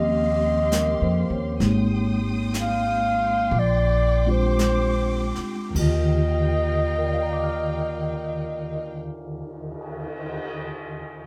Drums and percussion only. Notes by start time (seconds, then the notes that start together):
0.72 snare, hi-hat pedal
1.60 brush sweep, snare
2.54 snare, hi-hat pedal
3.53 brush sweep
4.59 snare, hi-hat pedal
5.35 snare
5.75 kick, crash
6.60 cymbal swell